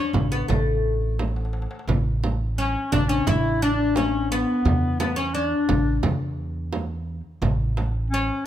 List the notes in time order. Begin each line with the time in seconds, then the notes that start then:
Already playing: C#4
0.13 A1, darbuka dum, frame drum
0.32 B3, darbuka ka
0.48 A1 A3, darbuka dum, frame drum
0.85 darbuka ka
1.19 darbuka tek, frame drum
1.28 darbuka ka
1.36 darbuka tek
1.45 darbuka ka
1.53 darbuka tek
1.62 darbuka ka
1.71 darbuka tek
1.79 darbuka ka
1.88 A1, darbuka dum, frame drum
2.06 darbuka ka
2.24 darbuka tek, frame drum
2.58 C#4
2.92 A1 D4, darbuka dum, frame drum
3.09 C#4
3.27 A1 E4, frame drum, darbuka dum
3.62 D4
3.96 C#4, darbuka tek, frame drum
4.31 B3
4.65 E2, frame drum, darbuka dum
4.83 darbuka ka
5.00 B3, darbuka tek, frame drum
5.16 C#4
5.34 C#4 D4
5.46 D4
5.69 A1, frame drum, darbuka dum
6.03 E2, frame drum, darbuka dum
6.73 darbuka tek, frame drum
7.09 darbuka ka
7.42 A1, frame drum, darbuka dum
7.61 darbuka ka
7.77 darbuka tek, frame drum
8.10 C#4